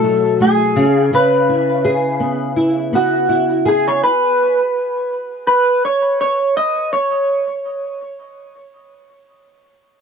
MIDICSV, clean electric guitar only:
0, 0, Header, 1, 2, 480
1, 0, Start_track
1, 0, Key_signature, 4, "minor"
1, 0, Tempo, 722892
1, 746, Time_signature, 4, 2, 24, 8
1, 6647, End_track
2, 0, Start_track
2, 0, Title_t, "Clean electric guitar"
2, 0, Program_c, 0, 27
2, 0, Note_on_c, 0, 69, 81
2, 248, Note_off_c, 0, 69, 0
2, 279, Note_on_c, 0, 68, 77
2, 726, Note_off_c, 0, 68, 0
2, 762, Note_on_c, 0, 71, 89
2, 1961, Note_on_c, 0, 66, 81
2, 1990, Note_off_c, 0, 71, 0
2, 2444, Note_off_c, 0, 66, 0
2, 2447, Note_on_c, 0, 68, 79
2, 2572, Note_off_c, 0, 68, 0
2, 2574, Note_on_c, 0, 73, 80
2, 2667, Note_off_c, 0, 73, 0
2, 2679, Note_on_c, 0, 71, 91
2, 3626, Note_off_c, 0, 71, 0
2, 3634, Note_on_c, 0, 71, 85
2, 3877, Note_off_c, 0, 71, 0
2, 3884, Note_on_c, 0, 73, 83
2, 4114, Note_off_c, 0, 73, 0
2, 4122, Note_on_c, 0, 73, 88
2, 4359, Note_off_c, 0, 73, 0
2, 4362, Note_on_c, 0, 75, 88
2, 4598, Note_off_c, 0, 75, 0
2, 4601, Note_on_c, 0, 73, 80
2, 6008, Note_off_c, 0, 73, 0
2, 6647, End_track
0, 0, End_of_file